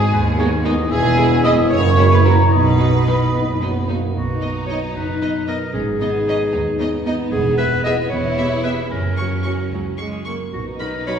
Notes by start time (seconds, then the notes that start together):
Already playing: G#2 B3 D#4 G#4 B4 D#5 G#5
0.12 D#2 B4
0.38 G#3 B3 D#4 C#5
0.64 G#3 B3 D#4 D#5
0.73 E2
0.78 B3
0.82 E4
0.87 G#4 B4
0.91 E1 E2 B3 E4 G#4 E5 G#5
1.17 G#3 B3 E4
1.44 G#3 B3 E4 D#5 D#6
1.52 F#2
1.56 A#3
1.61 E4
1.65 F#4 C#5
1.70 F#1 F#2 A#3 E4 C#5 C#6
1.78 B5
1.87 C#6
1.98 F#3 A#3 E4
2.11 B4 B5
2.25 F#3 A#3 E4 A#4 A#5
2.34 B2
2.39 B3
2.43 D#4
2.47 B1 F#4 B4
2.52 B1 B2 B3 D#4 B4 D#5 B5
2.79 F#3 B3 D#4
3.07 F#3 B3 D#4
3.33 F#1 F#2 D#4
3.61 F#3 B3 D#4
3.88 F#3 A#3 B3 D#4
4.15 B1 B2 D#4 F#4
4.41 F#3 B3 D#4 D#5
4.67 B3 D#4 C#5 D#5
4.95 F#1 F#2 D#4 B4
5.21 B3 D#4 F#4 D#5
5.47 B3 D#4 A#4 D#5
5.73 G#1 G#2 C#4 G#4
6.00 D#3 B3 D#4 D#5
6.27 B3 C#4 D#4 D#5
6.53 D#2 D#4
6.79 B3 C#4 D#4 B4 D#5
7.05 B3 D#4 D#5
7.31 E1 E2 G#4
7.58 B3 G#4 B4 E5
7.84 B3 E4 G#4 B4 D#5 E5
8.10 E1 E2 E4 C#5
8.37 B3 G4 E5
8.64 B3 E4 G4 B4 E5
8.91 F#1 F#2 C#4 A#4
9.17 C#3 F#3 F#4 C#6
9.43 F#3 F#4 C#6
9.72 C#2 F#3 C#4
9.98 G#3 F#4 C#6
10.25 F#3 A#3 C#6
10.53 B1 B2 D#4 F#4
10.79 F#3 B3 D#4 A#4 B5
11.07 F#3 D#4 C#5 B5